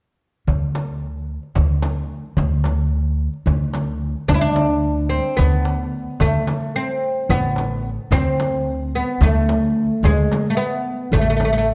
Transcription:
0.47 upright bass D2, darbuka dum, frame drum
0.75 darbuka tek, frame drum
1.02 darbuka ka
1.29 darbuka ka
1.43 darbuka ka
1.55 upright bass D2, frame drum, darbuka dum
1.82 darbuka tek, frame drum
2.37 upright bass D2, darbuka dum, frame drum
2.64 darbuka tek, frame drum
2.92 darbuka ka
3.21 darbuka ka
3.34 darbuka ka
3.46 upright bass D2, darbuka dum, frame drum
3.74 darbuka tek, frame drum
4.28 upright bass D2, oud D4, darbuka dum, frame drum
4.34 oud E4
4.41 oud D4
4.56 darbuka tek, frame drum
5.09 oud C4
5.37 upright bass D2, oud B3, darbuka dum, frame drum
5.65 darbuka tek
5.93 darbuka ka
6.20 upright bass D2, oud A3, frame drum, darbuka dum
6.47 darbuka tek, frame drum
6.76 oud C4
7.03 darbuka ka
7.29 upright bass A1, oud B3, darbuka dum, frame drum
7.56 darbuka tek, frame drum
7.84 darbuka ka
8.11 upright bass D2, oud C4, frame drum, darbuka dum
8.40 darbuka tek, frame drum
8.95 oud B3
9.21 upright bass D2, oud A3, darbuka dum, frame drum
9.49 darbuka tek, frame drum
9.78 darbuka ka
10.03 upright bass D2, oud G#3, frame drum, darbuka dum
10.32 darbuka tek, frame drum
10.50 oud A3
10.57 oud B3
11.12 upright bass A1, oud A3, darbuka dum, frame drum
11.21 oud A3
11.30 oud A3
11.36 oud A3, frame drum
11.40 darbuka tek
11.45 oud A3
11.53 oud A3
11.58 oud A3
11.68 darbuka ka

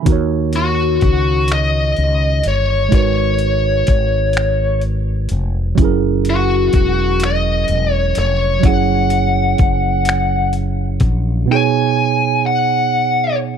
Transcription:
0.03 tine electric piano D#3 D#4, kick, closed hi-hat
0.07 fretless electric bass D#2, tine electric piano F#4 A#4
0.12 tine electric piano C#5
0.53 lead electric guitar F#4, closed hi-hat
1.01 fretless electric bass C#2, kick, closed hi-hat
1.48 finger snap, closed hi-hat
1.53 lead electric guitar D#5
1.96 fretless electric bass C#2, closed hi-hat
2.44 fretless electric bass G1, closed hi-hat
2.48 lead electric guitar C#5
2.89 fretless electric bass G#1, tine electric piano G#3 D#4 F#4, kick, closed hi-hat
2.95 tine electric piano A#4 B4 C#5, lead electric guitar C#5
3.39 closed hi-hat
3.87 fretless electric bass G#1, kick, closed hi-hat
4.33 finger snap, closed hi-hat
4.81 closed hi-hat
5.29 fretless electric bass F1, closed hi-hat
5.75 fretless electric bass F#1, tine electric piano F#3 C#4, kick, closed hi-hat
5.80 tine electric piano E4 G#4
5.84 tine electric piano A#4
6.25 closed hi-hat
6.30 lead electric guitar F#4
6.73 fretless electric bass E1, kick, closed hi-hat
7.20 finger snap, closed hi-hat
7.25 lead electric guitar D#5
7.68 fretless electric bass E1, closed hi-hat
7.93 lead electric guitar C#5
8.15 fretless electric bass F1, lead electric guitar C#5, closed hi-hat
8.60 fretless electric bass F#1, tine electric piano F#3 C#4, kick, closed hi-hat
8.65 tine electric piano E4 G#4, lead electric guitar F#5
8.70 tine electric piano C#5
9.10 closed hi-hat
9.58 fretless electric bass F#1, kick, closed hi-hat
10.05 finger snap, closed hi-hat
10.53 closed hi-hat
11.00 fretless electric bass A#1, kick, closed hi-hat
11.46 tine electric piano B2 B3
11.50 tine electric piano D#4 G#4, lead electric guitar G#5
11.55 tine electric piano C#5
12.46 lead electric guitar F#5

